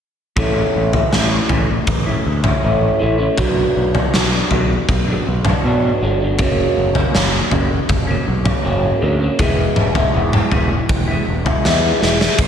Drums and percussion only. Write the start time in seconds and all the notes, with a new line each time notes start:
0.37 kick, floor tom
0.93 floor tom
1.13 snare
1.49 floor tom
1.87 kick, floor tom
2.44 floor tom, mid tom
3.38 kick, floor tom
3.95 floor tom
4.14 snare
4.51 floor tom
4.89 kick, floor tom
5.45 floor tom, mid tom
6.39 kick, floor tom
6.95 floor tom
7.15 snare
7.51 floor tom
7.89 kick, floor tom
8.45 floor tom, mid tom
9.39 kick, floor tom
9.76 mid tom
9.95 floor tom
10.33 mid tom
10.51 floor tom
10.89 kick, floor tom
11.46 floor tom
11.65 snare
12.02 snare
12.21 snare
12.39 kick, floor tom, crash